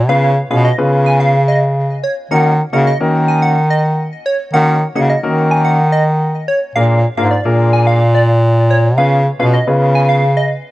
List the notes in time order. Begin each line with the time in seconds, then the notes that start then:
Already playing: A#2
0.09 C#3 B3 C#4 F4 G#4 B4 F5
0.50 B2 B3 C#4 F4 G#4 B4 F5
0.65 D#5
0.78 C#3 B3 C#4 F4 G#4 B4
1.06 G#5
1.20 F5
1.48 D#5
2.04 C#5
2.31 D#3 A#3 C#4 D#4 F#4 A#4 F#5
2.73 C#3 A#3 C#4 D#4 F#4 A#4 F#5
2.87 D#5
3.00 D#3 A#3 C#4 D#4 F#4 A#4
3.28 G#5
3.43 F#5
3.70 D#5
4.26 C#5
4.53 D#3 A#3 C#4 D#4 F#4 A#4 F#5
4.95 C#3 A#3 C#4 D#4 F#4 G#4 F#5
5.10 D#5
5.23 D#3 A#3 C#4 D#4 F#4 A#4
5.51 G#5
5.65 F#5
5.92 D#5
6.48 C#5
6.76 A#2 A#3 D4 F4 G#4 A#4 F5
7.17 G#2 A#3 D4 F4 G#4 A#4 F5
7.31 D5
7.45 A#2 A#3 D4 F4 G#4 A#4
7.73 G#5
7.87 F5
8.15 D5
8.70 C#5
8.98 C#3 B3 C#4 F4 G#4 B4 F5
9.39 B2 B3 C#4 F4 G#4 B4 F5
9.53 D#5
9.67 C#3 B3 C#4 F4 G#4 B4
9.95 G#5
10.09 F5
10.37 D#5